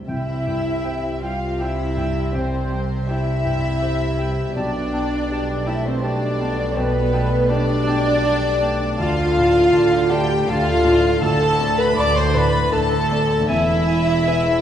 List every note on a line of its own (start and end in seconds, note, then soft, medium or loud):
0.00 0.10 G2 soft
0.00 0.10 E4 soft
0.00 0.10 C5 soft
0.07 4.51 C2 medium
0.07 2.31 C2 medium
0.07 4.52 C3 medium
0.07 1.19 C3 medium
0.07 4.52 G3 medium
0.07 1.18 E4 medium
0.07 4.52 G4 medium
0.07 1.18 E5 medium
0.07 1.19 E5 medium
0.07 0.24 G5 soft
0.07 0.25 G5 medium
0.46 1.08 G2 soft
0.46 0.62 G5 soft
0.84 1.18 G4 soft
0.84 1.19 C5 soft
0.84 1.00 G5 medium
0.84 1.00 G5 soft
1.22 1.82 G3 soft
1.22 1.60 F4 medium
1.22 1.60 F5 medium
1.22 1.61 F5 medium
1.22 1.38 G5 soft
1.22 1.40 G5 medium
1.59 2.35 E4 medium
1.59 1.94 G4 soft
1.59 1.94 C5 soft
1.59 2.35 E5 medium
1.59 2.36 E5 medium
1.59 1.75 G5 soft
1.59 1.77 G5 medium
1.97 2.57 G2 soft
1.97 2.13 G5 medium
1.97 2.14 G5 soft
2.33 4.52 C2 medium
2.33 3.08 C4 medium
2.33 3.07 C5 medium
2.33 3.08 C5 medium
2.33 3.07 C5 medium
2.33 2.49 G5 soft
2.33 2.50 G5 medium
2.70 3.30 G3 soft
2.70 2.86 G5 medium
2.70 2.88 G5 soft
3.06 4.56 E4 medium
3.06 3.41 G4 soft
3.06 3.41 C5 medium
3.06 4.54 E5 medium
3.06 4.32 E5 medium
3.06 4.56 E5 medium
3.06 3.23 G5 soft
3.06 3.24 G5 soft
3.44 4.03 G2 soft
3.44 3.60 G5 medium
3.44 3.61 G5 soft
3.80 4.15 G4 soft
3.80 4.15 C5 medium
3.80 3.96 G5 medium
3.80 3.97 G5 medium
4.18 4.56 G3 soft
4.18 4.34 G5 medium
4.18 4.36 G5 medium
4.54 9.01 B1 medium
4.54 6.74 B1 medium
4.54 9.02 B2 medium
4.54 8.82 G3 medium
4.54 5.64 D4 loud
4.54 8.82 A4 medium
4.54 5.66 D5 medium
4.54 5.67 D5 medium
4.54 5.65 D5 medium
4.54 4.72 G5 medium
4.54 4.72 A5 medium
4.93 5.52 B2 soft
4.93 5.09 G5 medium
4.93 5.10 A5 medium
5.30 5.63 G4 medium
5.30 5.63 D5 medium
5.30 5.48 G5 medium
5.30 5.48 A5 medium
5.65 6.26 A3 medium
5.65 5.85 E4 medium
5.65 5.86 E5 medium
5.65 5.81 G5 medium
5.65 5.84 A5 medium
5.85 6.04 C4 medium
5.85 6.04 C5 medium
5.85 6.05 C5 medium
6.03 6.77 D4 medium
6.03 6.37 G4 soft
6.03 6.37 D5 medium
6.03 6.78 D5 medium
6.03 6.76 D5 medium
6.03 6.78 D5 medium
6.03 6.21 G5 medium
6.03 6.20 A5 medium
6.40 6.99 B2 medium
6.40 6.56 G5 medium
6.40 6.57 A5 medium
6.76 8.97 B1 medium
6.76 7.50 B3 loud
6.76 7.50 B4 medium
6.76 7.51 B4 medium
6.76 6.92 G5 medium
6.76 6.92 A5 medium
7.12 7.73 A3 medium
7.12 7.28 G5 medium
7.12 7.30 A5 medium
7.49 9.01 D4 loud
7.49 7.84 G4 medium
7.49 9.00 D5 medium
7.49 8.78 D5 loud
7.49 9.01 D5 loud
7.49 7.84 D5 medium
7.49 7.65 G5 medium
7.49 7.66 A5 medium
7.87 8.48 B2 medium
7.87 8.05 G5 medium
7.87 8.03 A5 medium
8.24 8.59 G4 medium
8.24 8.59 D5 medium
8.24 8.42 G5 medium
8.24 8.40 A5 medium
8.62 9.01 A3 medium
8.62 8.79 G5 medium
8.62 8.78 A5 medium
8.98 11.19 D2 medium
8.98 9.66 D2 medium
8.98 9.66 D3 medium
8.98 13.43 A3 medium
8.98 10.09 F4 loud
8.98 13.44 A4 medium
8.98 9.17 D5 medium
8.98 10.08 F5 loud
8.98 10.09 F5 loud
8.98 10.12 F5 medium
8.98 9.14 A5 medium
9.37 9.96 A2 medium
9.37 9.55 D5 medium
9.37 9.53 A5 medium
9.73 10.40 D2 medium
9.73 10.40 D3 medium
9.73 10.07 A4 medium
9.73 10.07 D5 medium
9.73 9.91 D5 medium
9.73 9.89 A5 medium
10.10 10.70 A3 medium
10.10 10.48 G4 loud
10.10 10.26 D5 medium
10.10 10.48 G5 medium
10.10 10.48 G5 loud
10.10 10.49 G5 medium
10.10 10.27 A5 medium
10.47 11.15 D2 loud
10.47 11.15 D3 medium
10.47 11.23 F4 loud
10.47 10.82 A4 medium
10.47 10.82 D5 medium
10.47 10.65 D5 medium
10.47 11.24 F5 medium
10.47 11.24 F5 loud
10.47 11.24 F5 medium
10.47 10.65 A5 medium
10.84 11.45 A2 medium
10.84 11.00 D5 medium
10.84 11.00 A5 medium
11.21 13.43 D2 medium
11.21 11.89 D2 medium
11.21 11.89 D3 medium
11.21 11.78 A4 loud
11.21 11.39 D5 medium
11.21 11.37 A5 medium
11.21 11.78 A5 loud
11.21 11.79 A5 loud
11.21 11.78 A5 loud
11.60 12.20 A3 medium
11.60 11.78 D5 medium
11.60 11.77 A5 medium
11.77 11.97 B4 loud
11.77 11.98 B5 medium
11.77 11.99 B5 loud
11.97 12.64 D2 medium
11.97 12.64 D3 medium
11.97 12.31 A4 medium
11.97 12.16 D5 loud
11.97 12.32 D5 medium
11.97 12.15 D5 medium
11.97 12.13 A5 medium
11.97 12.17 D6 loud
11.97 12.17 D6 medium
11.97 12.18 D6 loud
12.16 12.36 C5 loud
12.16 12.35 C6 medium
12.16 12.36 C6 medium
12.33 12.95 A2 medium
12.33 12.73 B4 loud
12.33 12.53 D5 medium
12.33 12.49 A5 medium
12.33 12.73 B5 loud
12.33 12.74 B5 loud
12.72 13.40 D2 medium
12.72 13.40 D3 medium
12.72 13.48 A4 loud
12.72 13.07 A4 medium
12.72 12.88 D5 medium
12.72 13.06 D5 medium
12.72 12.88 A5 medium
12.72 13.48 A5 medium
12.72 13.47 A5 loud
13.11 13.49 A3 medium
13.11 13.28 D5 medium
13.11 13.27 A5 medium
13.47 14.61 E1 medium
13.47 14.61 E2 medium
13.47 14.61 G#3 medium
13.47 14.61 E4 loud
13.47 14.61 E4 medium
13.47 13.63 E5 medium
13.47 14.61 E5 loud
13.47 13.64 G#5 medium
13.86 14.50 B2 medium
13.86 14.02 E5 medium
13.86 14.03 G#5 medium
14.25 14.61 E4 medium
14.25 14.61 B4 medium
14.25 14.41 E5 medium
14.25 14.43 G#5 medium